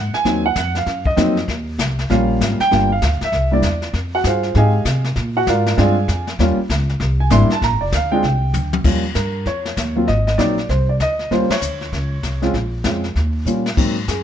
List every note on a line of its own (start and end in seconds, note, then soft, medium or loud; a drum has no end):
0.00 0.12 G#2 medium
0.00 0.11 F#5 medium
0.14 0.43 G#5 loud
0.14 muted upright bass stroke soft
0.14 snare soft
0.25 0.55 D#2 medium
0.25 0.42 F#3 medium
0.25 0.42 A#3 medium
0.25 0.42 C4 medium
0.25 0.43 D#4 medium
0.25 brush sweep soft
0.25 kick soft
0.25 snare medium
0.46 0.74 F#5 loud
0.56 0.86 F2 medium
0.56 kick soft
0.56 snare medium
0.56 hi-hat pedal medium
0.75 1.05 F5 medium
0.75 snare soft
0.86 1.16 F#2 medium
0.86 brush sweep soft
0.86 kick soft
0.86 snare soft
1.05 1.46 D#5 medium
1.05 kick medium
1.16 1.47 F2 loud
1.16 1.34 F#3 medium
1.16 1.34 A#3 medium
1.16 1.34 C4 medium
1.16 1.34 D#4 medium
1.16 kick soft
1.16 snare medium
1.16 hi-hat pedal medium
1.37 snare soft
1.48 1.78 D#2 medium
1.48 brush sweep soft
1.48 kick soft
1.48 snare medium
1.78 2.08 C2 medium
1.78 kick soft
1.78 snare medium
1.78 hi-hat pedal medium
1.99 snare soft
2.10 2.39 A#1 medium
2.10 2.56 G3 medium
2.10 2.56 A#3 medium
2.10 2.56 C#4 medium
2.10 2.56 F4 medium
2.10 2.56 F5 medium
2.10 brush sweep soft
2.10 kick soft
2.10 snare soft
2.41 2.58 G#1 medium
2.41 kick soft
2.41 snare medium
2.41 hi-hat pedal medium
2.60 2.89 G5 loud
2.60 muted upright bass stroke soft
2.60 snare soft
2.71 3.01 G1 medium
2.71 2.88 G3 medium
2.71 2.88 A#3 medium
2.71 2.88 D4 medium
2.71 2.89 F4 medium
2.71 brush sweep soft
2.71 kick soft
2.71 snare soft
2.92 3.20 F5 medium
3.02 3.20 D2 loud
3.02 kick soft
3.02 snare medium
3.02 hi-hat pedal medium
3.21 3.51 E5 loud
3.21 muted upright bass stroke soft
3.21 snare soft
3.32 3.62 C2 medium
3.32 brush sweep soft
3.32 kick soft
3.32 snare soft
3.51 3.62 G3 medium
3.51 3.62 A#3 medium
3.51 3.62 D4 medium
3.51 3.62 E4 medium
3.51 3.92 D5 medium
3.62 3.93 E2 medium
3.62 kick soft
3.62 snare medium
3.62 hi-hat pedal medium
3.82 snare soft
3.93 4.23 F2 medium
3.93 brush sweep medium
3.93 kick soft
3.93 snare soft
4.15 4.25 F#4 medium
4.15 4.25 F#5 medium
4.24 4.54 G2 medium
4.24 4.54 F4 medium
4.24 4.54 G#4 medium
4.24 4.54 C5 medium
4.24 4.54 F5 medium
4.24 kick soft
4.24 snare medium
4.24 hi-hat pedal medium
4.43 snare soft
4.55 4.84 G#2 medium
4.55 4.72 G#3 medium
4.55 4.72 C4 medium
4.55 4.73 D#4 medium
4.55 4.73 G4 medium
4.55 5.03 G#4 medium
4.55 5.03 D#5 medium
4.55 5.03 F5 medium
4.55 5.02 G#5 medium
4.55 brush sweep soft
4.55 kick soft
4.55 snare soft
4.85 5.15 C3 medium
4.85 kick soft
4.85 snare medium
4.85 hi-hat pedal medium
5.04 snare soft
5.16 5.46 A#2 medium
5.16 brush sweep soft
5.16 kick soft
5.16 snare medium
5.37 5.47 F#4 medium
5.37 5.47 F#5 medium
5.47 5.77 G#2 medium
5.47 5.76 F4 medium
5.47 5.77 A#4 medium
5.47 5.76 D5 medium
5.47 5.76 F5 medium
5.47 kick soft
5.47 snare medium
5.47 hi-hat pedal medium
5.67 snare medium
5.77 6.08 G2 medium
5.77 5.95 G#3 medium
5.77 5.95 C4 medium
5.77 5.95 D4 medium
5.77 5.95 F4 medium
5.77 6.25 G#4 medium
5.77 6.25 D5 medium
5.77 6.25 F5 medium
5.77 6.25 G#5 loud
5.77 brush sweep soft
5.77 kick soft
5.77 snare soft
6.08 6.38 F2 medium
6.08 kick soft
6.08 snare medium
6.08 hi-hat pedal medium
6.27 snare soft
6.39 6.57 D#2 medium
6.39 6.57 G3 medium
6.39 6.57 A#3 medium
6.39 6.57 C#4 medium
6.39 6.57 F4 medium
6.39 brush sweep medium
6.39 kick soft
6.39 snare soft
6.58 muted upright bass stroke soft
6.70 6.99 C#2 medium
6.70 kick soft
6.70 snare medium
6.70 hi-hat pedal medium
6.89 snare soft
7.00 7.30 C2 loud
7.00 brush sweep soft
7.00 kick soft
7.00 snare soft
7.20 7.31 G#5 medium
7.30 7.49 G#1 loud
7.30 7.48 G3 medium
7.30 7.48 A#3 medium
7.30 7.48 D4 medium
7.30 7.49 E4 medium
7.30 7.50 C6 loud
7.30 kick soft
7.30 snare medium
7.30 hi-hat pedal medium
7.50 7.63 A5 loud
7.50 muted upright bass stroke soft
7.50 snare soft
7.62 7.72 A#1 medium
7.62 7.81 A#5 loud
7.62 brush sweep medium
7.62 kick soft
7.62 snare medium
7.72 7.81 G#1 medium
7.81 7.91 F1 medium
7.81 7.92 D5 medium
7.92 8.22 D2 loud
7.92 8.12 F5 loud
7.92 kick soft
7.92 snare medium
7.92 hi-hat pedal medium
8.12 8.22 G#3 medium
8.12 8.22 C4 medium
8.12 8.22 D4 medium
8.12 8.22 F4 medium
8.12 8.75 G5 medium
8.23 8.53 C2 medium
8.23 brush sweep soft
8.23 kick soft
8.23 snare soft
8.54 8.83 D2 medium
8.54 hi-hat pedal medium
8.54 high tom medium
8.73 high tom medium
8.84 9.14 D#2 medium
8.84 9.02 G3 medium
8.84 9.02 A#3 medium
8.84 9.02 C#4 medium
8.84 9.02 F4 medium
8.84 brush sweep soft
8.84 kick medium
8.84 snare soft
8.84 crash medium
9.15 9.45 G2 medium
9.15 9.44 A#4 medium
9.15 kick soft
9.15 snare medium
9.15 hi-hat pedal medium
9.46 9.76 F2 medium
9.46 9.93 C#5 medium
9.46 brush sweep soft
9.46 kick soft
9.46 snare soft
9.65 snare medium
9.77 10.07 D#2 medium
9.77 kick soft
9.77 snare medium
9.77 hi-hat pedal medium
9.96 10.06 F#3 medium
9.96 10.06 A#3 medium
9.96 10.07 C4 medium
9.96 10.07 F4 medium
10.07 10.37 G#1 medium
10.07 10.26 D#5 loud
10.07 brush sweep soft
10.07 kick soft
10.07 snare soft
10.27 10.38 D#5 medium
10.27 snare soft
10.38 10.68 A#1 medium
10.38 10.55 F#3 medium
10.38 10.56 A#3 medium
10.38 10.56 C4 medium
10.38 10.56 D#4 medium
10.38 10.67 D5 medium
10.38 kick soft
10.38 snare medium
10.38 hi-hat pedal medium
10.58 snare soft
10.69 10.99 C2 medium
10.69 10.87 C5 medium
10.69 brush sweep soft
10.69 kick soft
10.69 snare soft
10.89 10.94 D5 medium
11.00 11.30 D2 medium
11.00 11.33 D#5 loud
11.00 kick soft
11.00 snare medium
11.00 hi-hat pedal soft
11.19 snare soft
11.31 11.49 D#2 medium
11.31 11.48 G3 medium
11.31 11.48 A#3 medium
11.31 11.48 C#4 medium
11.31 11.48 F4 medium
11.31 11.51 C5 medium
11.31 brush sweep soft
11.31 kick soft
11.31 snare soft
11.49 12.39 C#5 medium
11.49 muted upright bass stroke soft
11.49 snare medium
11.49 ride medium
11.61 11.91 D2 medium
11.61 hi-hat pedal medium
11.81 snare soft
11.92 12.22 C#2 medium
11.92 brush sweep soft
11.92 kick soft
11.92 snare soft
12.23 12.53 C2 medium
12.23 kick soft
12.23 snare medium
12.23 hi-hat pedal soft
12.42 12.52 G#3 medium
12.42 12.53 C4 medium
12.42 12.53 C#4 medium
12.42 12.53 F4 medium
12.42 snare soft
12.54 12.84 A#1 medium
12.54 brush sweep soft
12.54 kick soft
12.54 snare soft
12.84 13.14 F2 medium
12.84 13.02 G#3 medium
12.84 13.02 C4 soft
12.84 13.02 C#4 soft
12.84 13.02 F4 medium
12.84 kick soft
12.84 snare medium
12.84 hi-hat pedal medium
13.04 snare soft
13.15 13.45 D#2 medium
13.15 brush sweep soft
13.15 kick soft
13.15 snare soft
13.45 13.76 A#2 medium
13.45 13.64 G3 medium
13.45 13.64 A#3 soft
13.45 13.64 C#4 medium
13.45 13.64 F4 medium
13.45 hi-hat pedal medium
13.66 snare medium
13.77 14.07 G#2 medium
13.77 13.94 F#3 medium
13.77 13.94 A#3 medium
13.77 13.94 C4 medium
13.77 13.95 D#4 medium
13.77 brush sweep medium
13.77 kick medium
13.77 snare soft
13.77 crash medium
14.08 14.23 F#2 medium
14.08 14.23 G#4 medium
14.08 kick soft
14.08 snare medium
14.08 hi-hat pedal medium